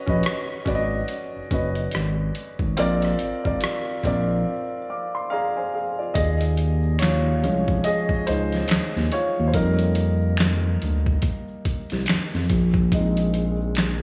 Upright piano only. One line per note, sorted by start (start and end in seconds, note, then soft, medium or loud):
0.00 0.06 C#4 medium
0.00 0.07 F#4 medium
0.00 0.09 B4 loud
0.00 0.09 D#5 loud
0.06 0.58 C#4 medium
0.06 0.58 F#4 medium
0.06 0.59 B4 medium
0.06 0.59 D#5 medium
0.65 1.39 C#4 medium
0.65 1.40 F#4 medium
0.65 1.40 B4 medium
0.65 0.75 D5 medium
0.75 1.44 D#5 medium
1.51 2.61 C#4 medium
1.51 2.62 F#4 medium
1.51 2.62 B4 medium
1.51 2.63 D#5 medium
2.77 3.33 C4 loud
2.77 3.33 F4 medium
2.77 3.33 A#4 medium
2.77 3.34 D5 loud
3.44 3.96 C4 medium
3.44 3.96 F4 medium
3.44 3.97 A#4 medium
3.44 3.97 D5 medium
4.04 4.78 C4 medium
4.04 4.78 F4 medium
4.04 4.79 A#4 medium
4.04 4.79 D5 medium
4.90 5.13 F5 soft
4.90 5.13 D6 medium
5.15 5.31 C6 medium
5.30 5.73 G#4 medium
5.30 5.55 D5 soft
5.30 5.72 F5 medium
5.30 5.55 A#5 medium
5.57 5.73 C5 soft
5.57 5.73 G#5 medium
5.74 5.98 G#4 soft
5.74 5.97 F5 medium
5.99 6.39 F4 soft
5.99 6.39 D5 medium
6.14 6.97 G#4 medium
6.14 7.02 D#5 medium
6.99 7.81 F4 medium
6.99 7.87 C#5 medium
7.43 8.65 F3 medium
7.43 8.66 G#3 medium
7.43 8.66 C#4 medium
7.84 8.25 G#4 medium
7.84 8.24 D#5 medium
8.27 9.08 D#4 medium
8.27 9.14 C5 medium
9.12 9.22 F4 medium
9.12 9.20 C#5 medium
9.48 9.54 C5 medium
9.54 12.46 G3 soft
9.54 12.46 A#3 medium
9.54 11.20 D#4 medium
9.54 11.19 A#4 medium
12.93 13.52 G#3 medium
12.93 13.52 C4 soft
12.93 13.52 D#4 medium